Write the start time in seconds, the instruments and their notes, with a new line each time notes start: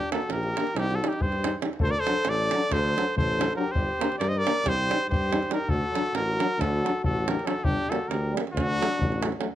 Already playing: flugelhorn D4, trumpet G4
0.11 euphonium A#3, french horn D4, flugelhorn F#4, trumpet A4, davul high
0.22 davul high
0.29 tuba A#1, flugelhorn G4, trumpet A#4, davul high
0.43 davul high
0.56 euphonium A#3, french horn D4, davul high
0.67 davul high
0.75 tuba C2, flugelhorn D#4, trumpet G4, davul high
0.91 flugelhorn F#4, davul high
0.95 trumpet A4
1.02 euphonium G3, french horn D#4, davul high
1.06 flugelhorn D#4, trumpet G4
1.13 davul high
1.21 tuba G2, flugelhorn G4, trumpet C5, davul low
1.32 davul high
1.44 euphonium G3, french horn D#4, davul high
1.61 euphonium G3, french horn D#4, davul high
1.73 davul high
1.80 tuba D2, flugelhorn A4, trumpet C5, davul low
1.87 flugelhorn A#4, trumpet D5
1.97 flugelhorn A4, trumpet C5
2.05 euphonium F#3, french horn D4, davul high
2.16 davul high
2.25 tuba A1, flugelhorn A4, davul high
2.29 trumpet D5
2.51 euphonium F#3, french horn D4, davul high
2.70 tuba D2, flugelhorn A4, trumpet C5, davul high, davul low
2.96 euphonium F#3, french horn D4, davul high
3.16 tuba A1, flugelhorn A4, trumpet C5, davul low
3.38 euphonium F#3, french horn D4, davul high
3.50 davul high
3.56 euphonium F#3, french horn D4, flugelhorn G4, trumpet A#4
3.72 tuba G1, flugelhorn G4, trumpet C5, davul low
4.00 euphonium A#3, french horn D4, davul high
4.12 davul high
4.19 tuba G2, flugelhorn A#4, trumpet D5, davul high
4.28 flugelhorn C5, trumpet D#5
4.37 flugelhorn A#4, trumpet D5
4.45 euphonium A#3, french horn D4, davul high
4.65 tuba C2, flugelhorn G4, trumpet C5, davul high, davul low
4.90 euphonium G3, french horn D#4, davul high
5.09 tuba G2, flugelhorn G4, trumpet C5, davul low
5.31 euphonium G3, french horn D#4, davul high
5.43 davul high
5.49 euphonium G3, french horn D#4, flugelhorn G4, trumpet A#4, davul high
5.69 tuba D2, flugelhorn F#4, trumpet A4, davul low
5.92 euphonium F#3, french horn D4, davul high
6.06 davul high
6.13 tuba A1, flugelhorn F#4, trumpet A#4, davul high
6.38 euphonium F#3, french horn D4, davul high
6.58 tuba D2, flugelhorn F#4, trumpet A4, davul high, davul low
6.83 euphonium F#3, french horn D4, davul high
7.04 tuba A1, flugelhorn F#4, trumpet A4, davul low
7.25 euphonium F#3, flugelhorn G4, davul high
7.29 french horn D4, trumpet A#4
7.39 davul high
7.45 euphonium F#3, french horn D4, trumpet A4, davul high
7.49 flugelhorn F#4
7.63 tuba G1, flugelhorn D4, trumpet G4, davul low
7.90 euphonium G3, french horn A#3, flugelhorn F#4, trumpet A4, davul high
8.08 tuba D2, flugelhorn G4, trumpet A#4, davul high
8.33 euphonium G3, french horn A#3
8.37 davul high
8.47 davul high
8.53 tuba D2, flugelhorn D4, trumpet F#4, davul high, davul low
8.79 euphonium F#3, french horn A3, davul high
8.93 davul high
8.98 tuba A1, davul low
9.12 davul high
9.21 euphonium F#3, french horn A3, davul high
9.32 davul high
9.39 euphonium F#3, french horn A3, davul high